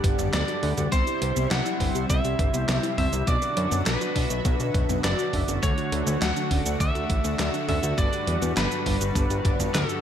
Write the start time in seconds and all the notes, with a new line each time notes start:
Already playing: G2 D3 G3 D4 G4 D5 F#5
0.04 G1 B4, kick, closed hi-hat, mid tom
0.19 G1 B3, closed hi-hat, mid tom, shaker
0.33 D2 B3 D5, snare, clap, closed hi-hat, shaker
0.48 F#4, closed hi-hat, shaker
0.63 D2 D4, open hi-hat
0.77 D2 G4, closed hi-hat, mid tom, shaker
0.92 C2 C3 G3 B3 C4 E4 C5, kick, closed hi-hat, shaker
1.07 G4, closed hi-hat, shaker
1.22 C2 B4, closed hi-hat
1.36 C2 B3, closed hi-hat, shaker
1.51 C2 B3 F#5, snare, clap, closed hi-hat, shaker
1.66 E4, closed hi-hat, shaker
1.80 G1 C3 G3 C4 E4 C5, kick, open hi-hat
1.95 C2 G4, closed hi-hat, shaker
2.10 C2 B3 E5, kick, closed hi-hat, shaker
2.24 C2 G4, closed hi-hat, shaker
2.39 G1 B4, kick, closed hi-hat
2.54 C2 B3, closed hi-hat, shaker
2.69 C2 B3, snare, clap, closed hi-hat, shaker
2.83 E4, closed hi-hat, shaker
2.98 C2 C4 E5, mid tom, open hi-hat
3.13 C2 G4, closed hi-hat, shaker
3.27 B1 B2 D3 F#3 B3 D4 F#4 D5, kick, closed hi-hat, shaker
3.42 B4, closed hi-hat, shaker
3.57 F#2 D5, closed hi-hat
3.71 F#2 B3, closed hi-hat, shaker
3.86 B1 B3 B4, snare, clap, closed hi-hat, shaker
4.01 F#4, closed hi-hat, shaker
4.15 B1 B2 B3 D4 F#4 E5, kick, open hi-hat
4.30 B1 B4, closed hi-hat, shaker
4.45 B1 B3, kick, closed hi-hat, shaker
4.60 B1 B4, closed hi-hat, shaker
4.74 B1 B4, kick, closed hi-hat, mid tom
4.89 B1 B3, closed hi-hat, mid tom, shaker
5.04 F#1 B4 D5, snare, clap, closed hi-hat, shaker
5.19 F#4, closed hi-hat, shaker
5.33 F#1 D4, kick, open hi-hat
5.48 F#1 F#4, closed hi-hat, mid tom, shaker
5.63 D2 D3 A3 D4 F#4 C#5, kick, closed hi-hat, shaker
5.78 F#4, closed hi-hat, shaker
5.92 D2 A4, closed hi-hat
6.07 D2 A3, closed hi-hat, shaker
6.22 D2 A3 F#5, snare, clap, closed hi-hat, shaker
6.36 D4, closed hi-hat, shaker
6.51 D1 D3 A3 C#4 D4 F#4 D5, kick, open hi-hat
6.66 D2 F#4, closed hi-hat, shaker
6.80 D2 A3 E5, kick, closed hi-hat, shaker
6.95 D2 F#4, closed hi-hat, shaker
7.10 A1 A4, kick, closed hi-hat
7.24 D2 A3, closed hi-hat, shaker
7.39 D2 A3, snare, clap, closed hi-hat, shaker
7.54 D4, closed hi-hat, shaker
7.68 D2 C#4 E5, mid tom, open hi-hat
7.83 D2 F#4, closed hi-hat, shaker
7.98 G1 G2 G3 B3 D4 F#4 B4 D5, kick, closed hi-hat, shaker
8.12 G4, closed hi-hat, shaker
8.27 E2 B4, closed hi-hat
8.42 E2 B3, closed hi-hat, shaker
8.57 G1 B3 B4, snare, clap, closed hi-hat, shaker
8.71 F#4, closed hi-hat, shaker
8.86 G1 G2 G3 D4 F#4 D5, kick, open hi-hat
9.01 G1 G4, closed hi-hat, shaker
9.15 G1 B3, kick, closed hi-hat, shaker
9.30 G1 G4, closed hi-hat, shaker
9.45 G1 B4, kick, closed hi-hat, mid tom
9.60 G1 B3, closed hi-hat, mid tom, shaker
9.74 D2 B3 A4, snare, clap, closed hi-hat, shaker
9.89 F#4, closed hi-hat, shaker